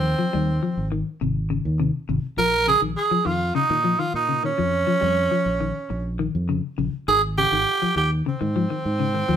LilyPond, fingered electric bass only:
\new Staff \with { instrumentName = "Fingered electric bass" } { \clef bass \time 4/4 \key bes \dorian \tempo 4 = 102 ees,16 r16 ees,8 r16 aes,,8 r16 aes,,8. ees,8 r16 aes,,16 r16 | bes,,8. bes,,16 r8 f,8 r16 bes,8 r16 bes,8. f,16~ | f,16 r16 f,8 r16 bes,,8 r16 bes,,8. f,8 r16 bes,,16 r16 | aes,,8. aes,,16 r8 ees,8 r16 aes,8 r16 aes,8. ees,16 | }